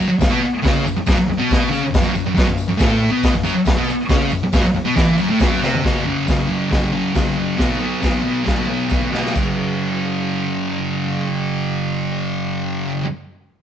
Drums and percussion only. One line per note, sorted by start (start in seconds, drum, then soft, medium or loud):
0.21 kick loud
0.21 snare loud
0.21 open hi-hat medium
0.21 tambourine loud
0.64 kick loud
0.64 snare loud
0.64 open hi-hat medium
0.64 tambourine soft
0.86 tambourine medium
1.06 kick loud
1.06 snare loud
1.06 open hi-hat medium
1.06 tambourine loud
1.29 tambourine soft
1.51 kick loud
1.51 snare loud
1.51 open hi-hat medium
1.51 tambourine medium
1.73 tambourine medium
1.94 kick loud
1.94 snare loud
1.94 open hi-hat medium
1.94 tambourine loud
2.15 tambourine medium
2.37 kick loud
2.37 snare loud
2.37 open hi-hat medium
2.37 tambourine soft
2.58 tambourine medium
2.79 kick loud
2.79 snare loud
2.79 open hi-hat medium
2.79 tambourine medium
3.01 tambourine soft
3.23 kick loud
3.23 snare loud
3.23 open hi-hat medium
3.23 tambourine medium
3.44 tambourine medium
3.65 kick loud
3.65 snare loud
3.65 open hi-hat medium
3.65 tambourine medium
3.88 tambourine medium
4.09 kick loud
4.09 snare loud
4.09 open hi-hat medium
4.09 tambourine soft
4.30 tambourine medium
4.52 kick loud
4.52 snare loud
4.52 open hi-hat medium
4.52 tambourine medium
4.74 tambourine soft
4.96 kick loud
4.96 snare loud
4.96 open hi-hat medium
4.96 tambourine medium
5.17 tambourine medium
5.39 kick loud
5.39 snare loud
5.39 open hi-hat medium
5.39 tambourine medium
5.63 snare medium
5.63 tambourine medium
5.74 floor tom loud
5.85 kick loud
5.85 snare loud
5.85 open hi-hat medium
6.28 kick loud
6.28 snare loud
6.28 open hi-hat medium
6.28 tambourine medium
6.72 kick loud
6.72 snare loud
6.72 open hi-hat medium
7.15 kick loud
7.15 snare loud
7.15 open hi-hat medium
7.15 tambourine medium
7.59 kick loud
7.59 snare loud
7.59 open hi-hat medium
8.02 kick loud
8.02 snare loud
8.02 open hi-hat medium
8.02 tambourine medium
8.47 kick loud
8.47 snare loud
8.47 open hi-hat soft
8.90 kick loud
8.90 snare medium
8.90 tambourine medium
9.14 snare medium
9.26 snare medium
9.35 kick medium
9.35 crash medium
9.35 tambourine medium